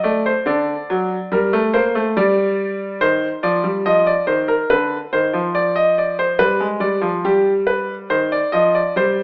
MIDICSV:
0, 0, Header, 1, 2, 480
1, 0, Start_track
1, 0, Key_signature, -3, "minor"
1, 0, Tempo, 848656
1, 1698, Time_signature, 4, 2, 24, 8
1, 5222, End_track
2, 0, Start_track
2, 0, Title_t, "Grand piano"
2, 0, Program_c, 0, 0
2, 20, Note_on_c, 0, 74, 63
2, 23, Note_on_c, 0, 57, 74
2, 139, Note_off_c, 0, 74, 0
2, 146, Note_on_c, 0, 72, 67
2, 172, Note_off_c, 0, 57, 0
2, 259, Note_on_c, 0, 50, 80
2, 262, Note_off_c, 0, 72, 0
2, 263, Note_on_c, 0, 74, 70
2, 409, Note_off_c, 0, 50, 0
2, 508, Note_on_c, 0, 54, 70
2, 656, Note_off_c, 0, 54, 0
2, 729, Note_off_c, 0, 74, 0
2, 745, Note_on_c, 0, 55, 77
2, 749, Note_on_c, 0, 70, 64
2, 860, Note_off_c, 0, 55, 0
2, 866, Note_on_c, 0, 57, 80
2, 895, Note_off_c, 0, 70, 0
2, 980, Note_off_c, 0, 57, 0
2, 981, Note_on_c, 0, 58, 83
2, 982, Note_on_c, 0, 72, 66
2, 1097, Note_off_c, 0, 58, 0
2, 1104, Note_on_c, 0, 57, 76
2, 1129, Note_off_c, 0, 72, 0
2, 1218, Note_off_c, 0, 57, 0
2, 1225, Note_on_c, 0, 55, 88
2, 1226, Note_on_c, 0, 74, 72
2, 1687, Note_off_c, 0, 55, 0
2, 1687, Note_off_c, 0, 74, 0
2, 1702, Note_on_c, 0, 51, 70
2, 1703, Note_on_c, 0, 72, 80
2, 1849, Note_off_c, 0, 51, 0
2, 1850, Note_off_c, 0, 72, 0
2, 1939, Note_on_c, 0, 53, 62
2, 1941, Note_on_c, 0, 74, 76
2, 2054, Note_off_c, 0, 53, 0
2, 2057, Note_on_c, 0, 55, 68
2, 2088, Note_off_c, 0, 74, 0
2, 2173, Note_off_c, 0, 55, 0
2, 2181, Note_on_c, 0, 53, 59
2, 2182, Note_on_c, 0, 75, 81
2, 2295, Note_off_c, 0, 75, 0
2, 2299, Note_on_c, 0, 74, 75
2, 2328, Note_off_c, 0, 53, 0
2, 2414, Note_off_c, 0, 74, 0
2, 2415, Note_on_c, 0, 72, 65
2, 2416, Note_on_c, 0, 51, 60
2, 2532, Note_off_c, 0, 72, 0
2, 2534, Note_on_c, 0, 70, 71
2, 2565, Note_off_c, 0, 51, 0
2, 2652, Note_off_c, 0, 70, 0
2, 2657, Note_on_c, 0, 50, 63
2, 2658, Note_on_c, 0, 71, 73
2, 2806, Note_off_c, 0, 50, 0
2, 2807, Note_off_c, 0, 71, 0
2, 2900, Note_on_c, 0, 72, 71
2, 2903, Note_on_c, 0, 51, 56
2, 3016, Note_on_c, 0, 53, 64
2, 3017, Note_off_c, 0, 51, 0
2, 3047, Note_off_c, 0, 72, 0
2, 3137, Note_on_c, 0, 74, 83
2, 3253, Note_off_c, 0, 74, 0
2, 3256, Note_on_c, 0, 75, 72
2, 3372, Note_off_c, 0, 75, 0
2, 3383, Note_on_c, 0, 74, 65
2, 3495, Note_off_c, 0, 74, 0
2, 3500, Note_on_c, 0, 72, 70
2, 3596, Note_off_c, 0, 53, 0
2, 3614, Note_off_c, 0, 72, 0
2, 3614, Note_on_c, 0, 55, 62
2, 3614, Note_on_c, 0, 71, 83
2, 3730, Note_off_c, 0, 55, 0
2, 3735, Note_on_c, 0, 56, 62
2, 3763, Note_off_c, 0, 71, 0
2, 3846, Note_on_c, 0, 55, 62
2, 3849, Note_on_c, 0, 74, 70
2, 3851, Note_off_c, 0, 56, 0
2, 3967, Note_off_c, 0, 55, 0
2, 3967, Note_on_c, 0, 53, 65
2, 4000, Note_off_c, 0, 74, 0
2, 4088, Note_off_c, 0, 53, 0
2, 4099, Note_on_c, 0, 55, 64
2, 4099, Note_on_c, 0, 67, 75
2, 4249, Note_off_c, 0, 67, 0
2, 4336, Note_on_c, 0, 71, 63
2, 4487, Note_off_c, 0, 71, 0
2, 4568, Note_off_c, 0, 55, 0
2, 4581, Note_on_c, 0, 51, 63
2, 4581, Note_on_c, 0, 72, 69
2, 4698, Note_off_c, 0, 72, 0
2, 4705, Note_on_c, 0, 74, 76
2, 4731, Note_off_c, 0, 51, 0
2, 4820, Note_on_c, 0, 75, 74
2, 4821, Note_off_c, 0, 74, 0
2, 4824, Note_on_c, 0, 53, 59
2, 4938, Note_off_c, 0, 75, 0
2, 4948, Note_on_c, 0, 74, 67
2, 4973, Note_off_c, 0, 53, 0
2, 5062, Note_off_c, 0, 74, 0
2, 5068, Note_on_c, 0, 55, 70
2, 5072, Note_on_c, 0, 72, 73
2, 5222, Note_off_c, 0, 55, 0
2, 5222, Note_off_c, 0, 72, 0
2, 5222, End_track
0, 0, End_of_file